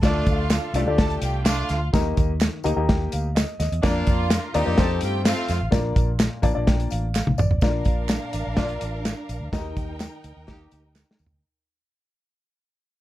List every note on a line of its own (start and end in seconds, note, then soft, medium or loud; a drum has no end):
0.02 0.23 D2 loud
0.02 0.71 D3 medium
0.02 0.47 A3 loud
0.02 0.41 A3 loud
0.02 0.48 D4 loud
0.02 0.41 D4 medium
0.02 0.47 F4 loud
0.02 0.41 F4 medium
0.02 0.41 A4 medium
0.02 0.41 D5 loud
0.02 kick loud
0.02 snare loud
0.02 closed hi-hat medium
0.02 tambourine medium
0.27 0.57 D2 medium
0.27 0.72 F4 medium
0.27 0.72 F5 loud
0.27 kick loud
0.27 closed hi-hat medium
0.27 tambourine soft
0.50 0.70 D4 medium
0.50 0.70 F4 medium
0.50 0.70 A4 medium
0.50 snare loud
0.50 clap loud
0.50 closed hi-hat medium
0.50 tambourine loud
0.74 0.84 C2 loud
0.74 1.19 A3 loud
0.74 0.81 A3 medium
0.74 1.19 D4 loud
0.74 0.81 D4 medium
0.74 0.81 F4 medium
0.74 1.19 G4 loud
0.74 0.81 A4 loud
0.74 0.81 D5 loud
0.74 closed hi-hat medium
0.74 tambourine medium
0.85 1.16 D2 medium
0.85 1.36 A3 medium
0.85 1.36 D4 medium
0.85 1.36 F4 medium
0.85 1.37 A4 medium
0.85 1.37 D5 medium
0.98 1.17 A4 medium
0.98 1.17 A5 loud
0.98 kick loud
0.98 snare loud
0.98 closed hi-hat medium
0.98 tambourine soft
1.10 closed hi-hat soft
1.21 1.62 C2 medium
1.21 1.40 A3 medium
1.21 1.40 D4 medium
1.21 1.40 F4 medium
1.21 1.40 G4 medium
1.21 1.40 G5 medium
1.21 closed hi-hat loud
1.21 tambourine medium
1.44 1.79 A3 loud
1.44 1.79 D4 loud
1.44 1.79 F4 loud
1.44 1.79 F5 loud
1.44 snare loud
1.44 clap loud
1.44 closed hi-hat medium
1.44 tambourine loud
1.69 1.90 D2 medium
1.69 snare soft
1.69 closed hi-hat medium
1.69 tambourine medium
1.93 2.14 D#2 loud
1.93 2.61 D#3 medium
1.93 2.30 A#3 medium
1.93 2.31 D#4 medium
1.93 2.31 G4 medium
1.93 2.31 A#4 medium
1.93 2.31 D#5 loud
1.93 kick loud
1.93 snare loud
1.93 closed hi-hat medium
1.93 tambourine medium
2.17 2.47 D#2 medium
2.17 kick loud
2.17 closed hi-hat medium
2.17 tambourine soft
2.41 snare loud
2.41 clap loud
2.41 closed hi-hat medium
2.41 tambourine loud
2.64 2.75 D2 medium
2.64 2.70 A#3 loud
2.64 2.70 D#4 medium
2.64 2.71 G4 medium
2.64 2.71 A#4 medium
2.64 2.71 D#5 loud
2.64 2.86 A#5 medium
2.64 closed hi-hat medium
2.64 tambourine medium
2.76 3.07 D#2 medium
2.76 3.26 A#3 medium
2.76 3.26 D#4 medium
2.76 3.26 G4 medium
2.76 3.26 A#4 medium
2.76 3.26 D#5 medium
2.89 3.10 G5 medium
2.89 kick loud
2.89 snare loud
2.89 closed hi-hat medium
3.12 3.43 D2 medium
3.12 3.34 F5 medium
3.12 closed hi-hat medium
3.12 tambourine soft
3.35 3.57 D#5 medium
3.35 snare loud
3.35 clap loud
3.35 closed hi-hat medium
3.35 tambourine loud
3.59 3.70 D#2 loud
3.59 3.81 D#5 medium
3.59 snare soft
3.59 closed hi-hat medium
3.59 tambourine medium
3.72 3.82 E2 loud
3.72 closed hi-hat medium
3.82 4.04 F2 loud
3.82 4.27 A#3 loud
3.82 4.20 A#3 medium
3.82 4.27 D4 loud
3.82 4.20 D4 medium
3.82 4.27 F4 loud
3.82 4.20 F4 medium
3.82 4.20 A#4 medium
3.82 4.21 D5 loud
3.82 kick loud
3.82 snare loud
3.82 closed hi-hat medium
3.82 tambourine medium
4.07 4.37 F2 medium
4.07 4.52 F4 medium
4.07 4.51 F5 medium
4.07 kick loud
4.07 closed hi-hat medium
4.07 tambourine soft
4.30 4.49 D4 medium
4.30 4.50 F4 medium
4.30 4.50 A#4 medium
4.30 snare loud
4.30 clap loud
4.30 closed hi-hat loud
4.30 tambourine medium
4.54 4.65 D#2 loud
4.54 4.60 A#3 medium
4.54 4.99 C4 loud
4.54 4.60 D4 medium
4.54 4.99 D#4 loud
4.54 4.61 F4 medium
4.54 4.99 G4 loud
4.54 4.61 A#4 loud
4.54 4.61 D5 loud
4.54 closed hi-hat medium
4.54 tambourine medium
4.65 4.77 F2 loud
4.65 4.77 A#3 loud
4.65 4.78 D4 medium
4.65 4.77 F4 medium
4.65 4.78 A#4 medium
4.65 4.78 D5 medium
4.77 4.98 F2 loud
4.77 5.53 C4 loud
4.77 5.54 D#4 medium
4.77 5.54 F4 medium
4.77 4.97 A4 medium
4.77 5.54 A4 medium
4.77 5.54 C5 loud
4.77 4.97 A5 loud
4.77 kick loud
4.77 snare loud
4.77 closed hi-hat medium
4.77 tambourine soft
5.01 5.32 G2 medium
5.01 5.21 A3 medium
5.01 5.21 C4 medium
5.01 5.21 F4 medium
5.01 5.21 G4 medium
5.01 5.21 G5 loud
5.01 closed hi-hat loud
5.01 tambourine medium
5.24 5.59 A3 loud
5.24 5.59 C4 loud
5.24 5.58 F4 loud
5.24 5.59 F4 loud
5.24 5.59 F5 loud
5.24 snare loud
5.24 clap loud
5.24 closed hi-hat medium
5.24 tambourine loud
5.48 5.59 F2 medium
5.48 snare soft
5.48 closed hi-hat medium
5.48 tambourine medium
5.61 5.71 A1 loud
5.71 5.92 A#1 loud
5.71 6.39 A#2 medium
5.71 6.09 A#3 medium
5.71 6.09 D4 medium
5.71 6.09 F4 medium
5.71 6.09 A#4 medium
5.71 6.09 D5 medium
5.71 kick loud
5.71 snare loud
5.71 closed hi-hat medium
5.71 tambourine medium
5.96 6.26 A#1 loud
5.96 kick loud
5.96 closed hi-hat medium
5.96 tambourine soft
6.20 snare loud
6.20 clap medium
6.20 closed hi-hat medium
6.20 tambourine loud
6.42 6.54 A1 loud
6.42 6.49 A#3 loud
6.42 6.49 D4 medium
6.42 6.49 F4 medium
6.42 6.50 A#4 medium
6.42 6.50 D5 loud
6.42 6.65 A5 medium
6.42 kick medium
6.42 closed hi-hat medium
6.42 tambourine medium
6.53 6.86 A#1 loud
6.53 7.04 A#3 medium
6.53 7.04 D4 medium
6.53 7.04 F4 medium
6.53 7.05 A#4 medium
6.53 7.05 D5 loud
6.67 6.89 G5 medium
6.67 kick loud
6.67 snare loud
6.67 closed hi-hat medium
6.67 tambourine soft
6.80 closed hi-hat medium
6.90 7.22 A1 medium
6.90 7.13 F5 medium
6.90 closed hi-hat medium
6.90 tambourine medium
7.14 7.37 F5 medium
7.14 snare medium
7.14 clap loud
7.14 tambourine loud
7.27 7.37 A#1 medium
7.27 high tom medium
7.38 7.58 A1 medium
7.38 7.60 D5 medium
7.38 mid tom loud
7.38 tambourine medium
7.51 floor tom medium
7.61 7.82 A#1 medium
7.61 8.29 A#2 medium
7.61 8.12 D4 medium
7.61 9.49 D4 medium
7.61 8.12 F4 medium
7.61 8.12 A#4 medium
7.61 9.49 A#4 medium
7.61 8.12 D5 medium
7.61 9.49 F5 medium
7.61 kick loud
7.61 snare loud
7.61 closed hi-hat medium
7.61 tambourine medium
7.85 8.16 A#1 medium
7.85 kick medium
7.85 closed hi-hat medium
7.85 tambourine soft
8.09 snare loud
8.09 clap loud
8.09 closed hi-hat medium
8.09 tambourine medium
8.33 8.44 A1 loud
8.33 closed hi-hat medium
8.33 tambourine soft
8.47 8.76 A#1 medium
8.57 8.91 A#3 loud
8.57 9.07 D4 medium
8.57 8.91 D4 medium
8.57 8.91 F4 loud
8.57 9.07 F4 medium
8.57 9.07 A#4 medium
8.57 9.07 D5 medium
8.57 kick loud
8.57 snare loud
8.57 closed hi-hat medium
8.57 tambourine soft
8.69 closed hi-hat soft
8.81 9.12 A1 medium
8.81 closed hi-hat medium
8.81 tambourine soft
9.05 snare loud
9.05 clap loud
9.05 closed hi-hat medium
9.05 tambourine loud
9.29 9.39 A#1 medium
9.29 closed hi-hat medium
9.29 tambourine medium
9.41 9.51 D2 medium
9.52 9.73 D#2 loud
9.52 10.20 D#3 medium
9.52 10.02 D#4 medium
9.52 11.40 D#4 medium
9.52 9.58 F#4 medium
9.52 10.03 A#4 medium
9.52 11.40 A#4 medium
9.52 10.03 D#5 loud
9.52 11.40 G5 medium
9.52 kick loud
9.52 snare loud
9.52 closed hi-hat medium
9.52 tambourine medium
9.58 10.05 G4 medium
9.77 10.07 D#2 medium
9.77 kick medium
9.77 closed hi-hat medium
9.77 tambourine soft
10.00 snare loud
10.00 clap medium
10.00 closed hi-hat medium
10.00 tambourine medium
10.24 10.34 D2 loud
10.24 closed hi-hat medium
10.24 tambourine medium
10.37 10.67 D#2 medium
10.47 10.82 A#3 loud
10.47 10.98 D#4 medium
10.47 10.82 D#4 medium
10.47 10.81 G4 loud
10.47 10.98 G4 medium
10.47 10.98 A#4 medium
10.47 10.98 D#5 medium
10.47 kick loud
10.47 snare loud
10.47 closed hi-hat medium
10.47 tambourine soft
10.71 11.02 D2 medium
10.71 closed hi-hat medium
10.71 tambourine soft
10.95 snare medium
10.95 clap medium
10.95 tambourine medium
11.11 snare medium
11.19 11.30 D#2 medium
11.19 tambourine medium
11.26 floor tom loud
11.31 11.42 D2 medium